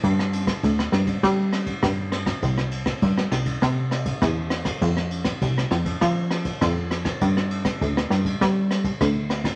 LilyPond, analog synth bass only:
\new Staff \with { instrumentName = "Analog synth bass" } { \clef bass \time 4/4 \key g \mixolydian \tempo 4 = 100 g,4 d,8 g,8 g4 g,4 | c,4 g,8 c,8 c4 e,4 | f,4 c,8 f,8 f4 f,4 | g,4 d,8 g,8 g4 d,4 | }